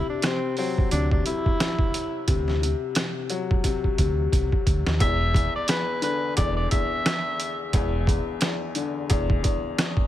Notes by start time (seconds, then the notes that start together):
Already playing: C3
0.09 D4
0.22 C3 C4, cross-stick, snare, closed hi-hat
0.57 F#3 C4, open hi-hat
0.78 kick
0.91 D2 C3 D4, closed hi-hat
1.11 D4, kick
1.26 C3 E4, closed hi-hat
1.46 kick
1.60 cross-stick, snare, closed hi-hat
1.79 kick
1.94 closed hi-hat
2.27 D2 C3, kick, closed hi-hat
2.48 snare
2.62 C3, closed hi-hat
2.95 C3, cross-stick, snare, closed hi-hat
3.30 F#3, closed hi-hat
3.51 kick
3.64 C3, kick, closed hi-hat
3.84 kick
3.98 D2 C3, kick, closed hi-hat
4.33 C2, kick, closed hi-hat
4.52 kick
4.67 D2, kick, closed hi-hat
4.87 D#2, snare
5.00 E1 E2 E5, kick, closed hi-hat
5.34 E2, kick, closed hi-hat
5.56 D5
5.68 E2 B4, cross-stick, snare, closed hi-hat
6.02 D3 B4, closed hi-hat
6.37 E1 E2 D5, kick, closed hi-hat
6.56 D5
6.71 E2 E5, kick, closed hi-hat
7.06 cross-stick, snare, closed hi-hat
7.40 closed hi-hat
7.73 E1 E2, kick, closed hi-hat
8.07 E2, kick, closed hi-hat
8.41 E2, cross-stick, snare, closed hi-hat
8.75 D3, closed hi-hat
9.10 E1 E2, kick, closed hi-hat
9.30 kick
9.43 E2, kick, closed hi-hat
9.78 cross-stick, snare, closed hi-hat
9.97 kick